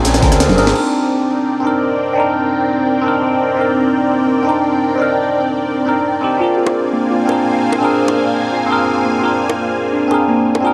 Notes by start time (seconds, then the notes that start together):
Already playing: A#1 C4 D4 G#4 A#4 C5 D5 G#5
0.05 F4, snare, closed hi-hat, ride, tambourine
0.14 snare, closed hi-hat, tambourine, high bongo
0.21 D2 C4 D4 G#4 A#4, kick, snare, closed hi-hat, ride, tambourine
0.32 cross-stick, snare, closed hi-hat, tambourine
0.40 snare, closed hi-hat, ride, tambourine
0.49 F1, snare, closed hi-hat, high tom
0.56 G#1 C4 D4 G#4 A#4, snare, closed hi-hat, open hi-hat, ride
0.67 snare, tambourine
0.72 C4 D4 A#4 D5 G5, crash
0.76 D#4 A#4
1.60 C4 D4
1.65 D#4 A#4
2.13 C4 D4
2.18 D#4 A#4
3.02 C4 D4
3.06 D#4 A#4
3.55 C4 D4
3.59 D#4 A#4
4.43 C4 D4
4.47 D#4 A#4
4.95 C4 D4
5.00 D#4 A#4
5.86 C4 D4 D#4 A#4
6.21 C4 D4 D#4 G4
6.37 A#3 C4 D4 F4 C5 F5 G#5
6.41 G#4 A#4
6.58 F4
6.67 high bongo
6.93 A#3
7.11 F4
7.25 C4 D4, high bongo
7.30 G#4 A#4
7.73 high bongo
7.78 C4 D4
7.82 G#4 A#4
8.08 high bongo
8.17 A#3
8.52 F4
8.66 C4 D4 F4
8.70 G#4 A#4
9.05 A#3
9.19 C4 D4 F4
9.23 G#4 A#4
9.50 high bongo
9.93 D4
10.07 C4 D4, high bongo
10.12 G#4 A#4
10.28 A#3
10.55 high bongo
10.60 C4 D4 F4
10.65 G#4 A#4